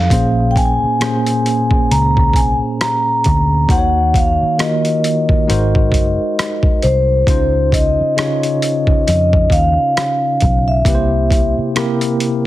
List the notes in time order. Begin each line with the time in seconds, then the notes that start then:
Already playing: F3 C4 D#4 G4 A4 F5 A#5
0.10 A#1 A#2 A#3 C#4 G#4 C5, kick, closed hi-hat
0.51 G5
0.56 G#5, kick, closed hi-hat
0.83 muted fingered electric bass stroke
1.00 A#2 A#3 C#4 G#4 C5, cross-stick, closed hi-hat
1.26 closed hi-hat
1.46 closed hi-hat
1.71 kick
1.91 C#2 A#5, closed hi-hat
2.17 kick
2.33 C2 G#5, kick, closed hi-hat
2.81 A#5, cross-stick, closed hi-hat
3.24 D2, kick, closed hi-hat
3.68 D#2 D#3 A#3 D#4 F#4 C5 F#5, kick, closed hi-hat
3.78 C#5
4.14 F5, kick, closed hi-hat
4.42 muted fingered electric bass stroke
4.58 D#3 A#3 F4 F#4 A#4 D#5, cross-stick, closed hi-hat
4.85 closed hi-hat
5.04 closed hi-hat
5.29 kick
5.47 G#1 G#3 D#4 F#4 A#4 C5, closed hi-hat
5.75 kick
5.92 F#1, kick, closed hi-hat
6.39 cross-stick, closed hi-hat
6.63 kick
6.82 C2 C5, closed hi-hat
7.27 C#2 C#3 C#4 D#4 F4 C5, kick, closed hi-hat
7.72 D#5, kick, closed hi-hat
8.00 muted fingered electric bass stroke
8.16 C#3 C#4 D#4 F4 C#5, cross-stick, closed hi-hat
8.43 closed hi-hat
8.62 closed hi-hat
8.87 kick
9.07 F2 D#5, closed hi-hat
9.33 kick
9.50 D#2 F5, kick, closed hi-hat
9.97 cross-stick, closed hi-hat
10.40 B1, kick, closed hi-hat
10.68 E5
10.85 C2 C3 A#3 E4 G4 B4, kick, closed hi-hat
10.95 C5
11.31 kick, closed hi-hat
11.58 muted fingered electric bass stroke
11.75 C3 A#3 E4 G4 A#4, cross-stick, closed hi-hat
12.01 closed hi-hat
12.20 closed hi-hat